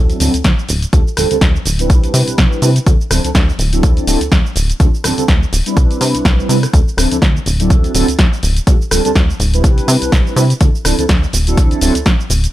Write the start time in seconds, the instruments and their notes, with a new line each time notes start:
Already playing: analog synth bass D2, analog polysynth F#3 C4 D4 E4 A4
0.10 closed hi-hat, cabasa
0.20 analog synth bass D1, analog polysynth F#3 C4 D4 E4 A4, open hi-hat, cabasa
0.34 analog synth bass D2, closed hi-hat, cabasa
0.44 analog synth bass D2, kick, snare, closed hi-hat, cabasa
0.59 cabasa
0.69 analog synth bass D1, open hi-hat, cabasa
0.82 closed hi-hat, cabasa
0.93 analog synth bass D2, analog polysynth G3 C4 D4 F4 A4, kick, closed hi-hat, cabasa
1.07 cabasa
1.17 analog synth bass D1, analog polysynth G3 C4 D4 F4 A4, cross-stick, open hi-hat, cabasa
1.31 analog synth bass D2, analog polysynth G3 C4 D4 F4 A4, closed hi-hat, cabasa
1.41 analog synth bass D2, kick, snare, closed hi-hat, cabasa
1.56 cabasa
1.66 analog synth bass D1, open hi-hat, cabasa
1.79 analog polysynth G3 C4 D4 E4 B4, closed hi-hat, cabasa
1.90 analog synth bass C2, kick, closed hi-hat, cabasa
2.04 closed hi-hat, cabasa
2.14 analog synth bass C3, open hi-hat, cabasa
2.28 analog synth bass C2, closed hi-hat, cabasa
2.38 analog synth bass C2, kick, snare, closed hi-hat, cabasa
2.53 cabasa
2.62 analog synth bass C3, analog polysynth G3 C4 D4 E4 B4, open hi-hat, cabasa
2.76 closed hi-hat, cabasa
2.86 analog synth bass D2, analog polysynth F3 C4 D4 E4 A4, kick, closed hi-hat, cabasa
3.01 cabasa
3.11 analog synth bass D1, analog polysynth F3 C4 D4 E4 A4, cross-stick, open hi-hat, cabasa
3.24 analog synth bass D2, analog polysynth F3 C4 D4 E4 A4, closed hi-hat, cabasa
3.35 analog synth bass D2, kick, snare, closed hi-hat, cabasa
3.49 cabasa
3.59 analog synth bass D1, open hi-hat, cabasa
3.72 analog polysynth F#3 C4 D4 E4 A4, closed hi-hat, cabasa
3.83 analog synth bass D2, kick, closed hi-hat, cabasa
3.97 closed hi-hat, cabasa
4.07 analog synth bass D1, analog polysynth F#3 C4 D4 E4 A4, open hi-hat, cabasa
4.21 analog synth bass D2, closed hi-hat, cabasa
4.32 analog synth bass D2, kick, snare, closed hi-hat, cabasa
4.46 cabasa
4.56 analog synth bass D1, open hi-hat, cabasa
4.70 closed hi-hat, cabasa
4.80 analog synth bass D2, analog polysynth G3 C4 D4 F4 A4, kick, closed hi-hat, cabasa
4.95 cabasa
5.04 analog synth bass D1, analog polysynth G3 C4 D4 F4 A4, cross-stick, open hi-hat, cabasa
5.17 analog synth bass D2, analog polysynth G3 C4 D4 F4 A4, closed hi-hat, cabasa
5.28 analog synth bass D2, kick, snare, closed hi-hat, cabasa
5.43 cabasa
5.53 analog synth bass D1, open hi-hat, cabasa
5.65 analog polysynth G3 C4 D4 E4 B4, closed hi-hat, cabasa
5.77 analog synth bass C2, kick, closed hi-hat, cabasa
5.91 closed hi-hat, cabasa
6.01 analog synth bass C3, open hi-hat, cabasa
6.15 analog synth bass C2, closed hi-hat, cabasa
6.25 analog synth bass C2, kick, snare, closed hi-hat, cabasa
6.40 cabasa
6.49 analog synth bass C3, analog polysynth G3 C4 D4 E4 B4, open hi-hat, cabasa
6.63 cross-stick, closed hi-hat, cabasa
6.73 analog synth bass D2, analog polysynth F3 C4 D4 E4 A4, kick, closed hi-hat, cabasa
6.88 cabasa
6.97 analog synth bass D1, analog polysynth F3 C4 D4 E4 A4, cross-stick, open hi-hat, cabasa
7.11 analog synth bass D2, analog polysynth F3 C4 D4 E4 A4, closed hi-hat, cabasa
7.22 analog synth bass D2, kick, snare, closed hi-hat, cabasa
7.37 cabasa
7.46 analog synth bass D1, open hi-hat, cabasa
7.59 analog polysynth F#3 C4 D4 E4 A4, closed hi-hat, cabasa
7.70 analog synth bass D2, kick, closed hi-hat, cabasa
7.84 closed hi-hat, cabasa
7.94 analog synth bass D1, analog polysynth F#3 C4 D4 E4 A4, open hi-hat, cabasa
8.08 analog synth bass D2, closed hi-hat, cabasa
8.19 analog synth bass D2, kick, snare, closed hi-hat, cabasa
8.33 cabasa
8.43 analog synth bass D1, open hi-hat, cabasa
8.56 closed hi-hat, cabasa
8.67 analog synth bass D2, analog polysynth G3 C4 D4 F4 A4, kick, closed hi-hat, cabasa
8.82 cabasa
8.91 analog synth bass D1, analog polysynth G3 C4 D4 F4 A4, cross-stick, open hi-hat, cabasa
9.05 analog synth bass D2, analog polysynth G3 C4 D4 F4 A4, closed hi-hat, cabasa
9.15 analog synth bass D2, kick, snare, closed hi-hat, cabasa
9.30 cabasa
9.40 analog synth bass D1, open hi-hat, cabasa
9.53 analog polysynth G3 C4 D4 E4 B4, closed hi-hat, cabasa
9.64 analog synth bass C2, kick, closed hi-hat, cabasa
9.78 closed hi-hat, cabasa
9.88 analog synth bass C3, open hi-hat, cabasa
10.02 analog synth bass C2, closed hi-hat, cabasa
10.12 analog synth bass C2, kick, snare, closed hi-hat, cabasa
10.27 cabasa
10.36 analog synth bass C3, analog polysynth G3 C4 D4 E4 B4, open hi-hat, cabasa
10.50 closed hi-hat, cabasa
10.60 analog synth bass D2, analog polysynth F3 C4 D4 E4 A4, kick, closed hi-hat, cabasa
10.75 cabasa
10.84 analog synth bass D1, analog polysynth F3 C4 D4 E4 A4, cross-stick, open hi-hat, cabasa
10.98 analog synth bass D2, analog polysynth F3 C4 D4 E4 A4, closed hi-hat, cabasa
11.09 analog synth bass D2, kick, snare, closed hi-hat, cabasa
11.23 cabasa
11.33 analog synth bass D1, open hi-hat, cabasa
11.47 analog polysynth F#3 C4 D4 E4 A4, closed hi-hat, cabasa
11.57 analog synth bass D2, kick, closed hi-hat, cabasa
11.71 closed hi-hat, cabasa
11.81 analog synth bass D1, analog polysynth F#3 C4 D4 E4 A4, open hi-hat, cabasa
11.95 analog synth bass D2, closed hi-hat, cabasa
12.06 analog synth bass D2, kick, snare, closed hi-hat, cabasa
12.20 cabasa
12.30 analog synth bass D1, open hi-hat, cabasa
12.44 closed hi-hat, cabasa